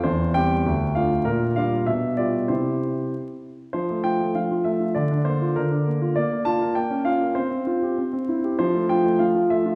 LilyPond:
\new Staff \with { instrumentName = "Grand piano" } { \time 2/4 \key f \major \tempo 4 = 98 << { c''8 g''4 f''8 | bes'8 f''8 e''8 d''8 | c''4 r4 | c''8 g''8 f''8 e''8 |
d''8 c''8 bes'4 | d''8 a''8 g''8 f''8 | c''4. r8 | c''8 g''8 f''8 e''8 | } \\ { e,8 <g c' g'>8 d,8 <a d' f'>8 | bes,8 <g d' f'>8 b,8 <g f' g'>8 | <c e' g'>4 r4 | f16 a16 f'16 a16 f16 f'16 a16 f'16 |
d16 d'16 bes16 f'16 d16 d'16 bes16 f'16 | bes16 bes16 f'16 bes'16 bes16 des'16 f'16 bes'16 | c'16 c'16 f'16 g'16 c'16 c'16 e'16 g'16 | f16 a16 f'16 a16 f16 f'16 a16 f'16 | } >> }